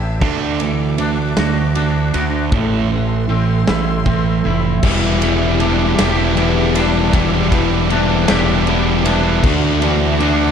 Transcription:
Already playing: A1 E3 D4 G4 E5 E6
0.21 D2 D3 A3 D4 F#4 D6, kick, crash
0.60 D3 E3 A3, ride
0.98 D3 A3 D4, ride
1.37 D2 D3 A3 F#4, snare, ride
1.75 D3 A3 D4, ride
2.14 D2 D3 A3 F#4, ride
2.52 A1 A2 E3 A3 A4 C6, kick
2.91 A2 E3
3.29 A2 E3 C4
3.68 A1 A2 E3 E4, snare
4.06 A2 E3 C4, kick
4.44 F1 A2 E3 E4
4.83 E1 E3 G3 B3 E4 G4 E5 D6, kick, crash
5.21 E3 G3 B3 E4, ride
5.60 E3 G3 B3 D4 E4, ride
5.98 E1 G3 B3 E4 G4, snare, ride
6.36 E3 G3 B3 E4, ride
6.74 G3 B3 D4 E4, ride
7.12 E1 E3 G3 B3 E4 D5, kick, ride
7.51 E3 G3 B3 E4, kick, ride
7.90 E3 G3 B3 D4 E4, ride
8.28 E1 G3 B3 E4 G4, snare, ride
8.66 E3 G3 B3 E4, ride
9.05 G3 B3 D4 E4, ride
9.44 D2 D3 A3 D4 F#4 E5 D6, kick, crash
9.82 E3 A3 D4 F#4, ride
10.20 D3 A3 D4 F#4, ride

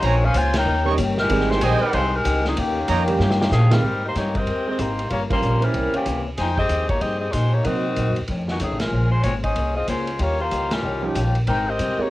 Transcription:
0.01 A#1 G#3 A#3 C#4 F4 G#4 C5 C#5 G#5 A#5, kick, ride
0.05 C4
0.25 C#4 G#4 C5 F5
0.34 C#2 A#3 C#4 F4 G#4 C5 C#5 G#5, kick, hi-hat pedal, ride
0.54 D#4 A#4 C#5 G5, snare, ride
0.65 D#2 D#3 A#3 C#4 G4
0.85 D#3 G3 A#3 C#4 G4 C#5 D#5 G5 C#6
0.97 G1 D#3 A#3 C#4 G4, kick, hi-hat pedal, ride
1.18 G#3 D#4 G4 A#4, snare
1.29 G#1 G#2 D#3 G3 G#3 C4 D#4 G4, kick, ride
1.41 snare
1.50 G#3 D#4 G4 C5, snare
1.61 A#1 G#2 G3 C4 D#4 G4 G#4 C5 D#5 G5 G#5, kick, hi-hat pedal, ride
1.81 G3 C4 D#4 A#4
1.93 C2 G#2 G3 G#3 C4 D#4 G4 C5, kick, ride
2.14 G#3 D#4 G4 A#4
2.24 C#2 G#2 G3 C4 D#4, kick, hi-hat pedal, ride
2.45 D#3 G3 C4 G#4, snare
2.56 D#2 D#3 A#3 C#4 G4, kick, ride
2.88 F2 D#3 A#3 C#4 G4 C#5 D#5 G5 A#5, kick, hi-hat pedal, ride
3.07 D#3 G3 A#3 C#4 G4, ride
3.19 G2 D#3 A#3 C#4 G4, snare
3.31 snare
3.39 D#3 A#3 C#4 G4, snare
3.51 A#2 D#3 F3 A#3 C#4 G4 G#4, snare, hi-hat pedal
3.70 D#3 G3 G#3 A#3 C4 D#4 F4 A#4, snare, ride
3.83 G#3 C4 G4 A#4
4.05 A#3 D#4 G4 C5
4.15 G2 G#3 A#3 C4 D#4 G4 A#4 C#5, kick, snare, hi-hat pedal, ride
4.35 C4 G4 A#4 D#5, kick, ride
4.47 D#2 G#3 C4 G4 A#4, kick, ride
4.67 G#3 C4 G4 A#4 D#5
4.78 G#1 G#3 A#3 C4 D#4 G4 A#4 C5, kick, hi-hat pedal, ride
4.99 ride
5.10 G1 G2 F3 A#3 C#4 F4 G4 C#5, kick, ride
5.29 G3 A#3 C#4 F4 G4 A#4 C5, kick, ride
5.42 A#1 G2 F3 A#3 C#4, hi-hat pedal
5.61 G3 A#3 C#4 E4 A#4 C5, ride
5.74 C2 C3 E3 A#3 C#4, kick, ride
5.94 E3 A#3 C#4 G4, muted upright bass stroke, ride
6.06 C#2 C3 E3 A#3 C#4, kick, hi-hat pedal, ride
6.37 F2 F3 A#3 D#4 G#4 C5 G5, kick, snare, ride
6.57 C4 G4 G#4 D#5, kick
6.69 D#2 F3 A#3 D#4 G#4, kick, hi-hat pedal, ride
6.87 A#3 D#4 G4 C#5, kick, ride
7.00 G2 F3 A#3 C4 D#4 G4 G#4 D#5, kick, ride
7.19 C4 G4 G#4 D#5
7.32 A#2 F3 G#3 A#3 D#4 G4 G#4 C5, kick, hi-hat pedal, ride
7.51 A#3 D#4 G4 C#5
7.64 C3 F#3 A#3 C4 D#4 F#4 A#4 D#5, kick, ride
7.96 A#2 C3 F#3 A#3 D#4, kick, hi-hat pedal, ride
8.07 F#2
8.16 D#2, ride
8.28 F2 D#3 A3 C#4, kick, ride
8.48 D#3 G#3 B3 F#4, snare
8.60 C#2 F2 D#3 A3 C#4 G#4, kick, hi-hat pedal, ride
8.71 A1
8.79 F1 G#3 C#4 F4 A#4, snare, ride
8.91 A#1 A#3 C#4 G#4 C5
9.10 G#3 C#4 F4 C5
9.23 G#1 G#3 A#3 C4 C#4 F4 G#4 C5 C#5, kick, hi-hat pedal, ride
9.43 C#4 G#4 C5 D#5, kick, ride
9.55 C2 A#3 C#4 G#4 C5, kick, ride
9.75 C4 F4 G#4 D#5
9.88 C#2 G#3 A#3 C#4 F4 G#4 C5, kick, hi-hat pedal, ride
10.07 ride
10.18 D#2 D#3 G3 A#3 C#4 F4 G4 C#5, kick, ride
10.40 A#3 F4 G4 C5
10.51 C#2 D#3 G3 C#4 F4, kick, hi-hat pedal, ride
10.71 G3 C#4 F4 A#4, snare, ride
10.83 C2 D#3 G3 C#4 F4
11.02 F3 A#3 C#4 D#4 G4
11.14 A#1 D#3 G3 C#4 F4, kick, hi-hat pedal, ride
11.35 ride
11.47 G#1 G#3 C4 D#4 G4 A#4 C5 G5, kick, ride
11.67 C4 G4 A#4 D#5
11.79 C2 G#3 C4 G4 A#4, kick, hi-hat pedal, ride
11.97 G#3 A#3 C4 D#4 G4 A#4 C#5, muted upright bass stroke

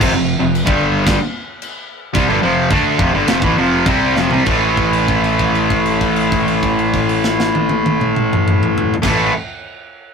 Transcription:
0.01 F1 F2 C3, kick, crash, china
0.13 F1 F2 C3
0.40 F1 F2 C3
0.55 china
0.66 G1 G2 D3 G3, kick
1.07 kick, snare, china
1.62 china
2.13 C2 C3 G3, kick, china
2.28 G1 G2 D3
2.42 F1 F2 C3 F3
2.70 D2 D3 A3 D4, kick, china
2.99 F1 F2 C3, kick
3.13 G1 G2 D3
3.27 F1 F2 C3, snare, china
3.42 A1 A2 E3, kick
3.56 F1 F2 C3 F3
3.86 C2 C3 G3 C4, kick, china
4.16 F1 F2 C3, snare
4.31 C2 C3 G3, floor tom
4.45 A1 A2 E3, kick, crash
4.49 A3
4.77 kick, crash
4.93 crash
5.08 kick, crash
5.24 crash
5.39 kick, crash
5.55 crash
5.70 kick, crash
5.86 crash
6.01 kick, crash
6.16 crash
6.32 kick, crash
6.48 crash
6.63 kick, crash
6.79 crash
6.94 kick, crash
7.09 crash
7.24 snare
7.40 snare
7.55 high tom
7.69 high tom
7.86 high tom
8.01 mid tom
8.16 mid tom
8.33 mid tom
8.48 mid tom
8.63 mid tom
8.78 floor tom
8.94 floor tom
9.02 A1 A2 E3, kick, snare, crash
9.06 A3

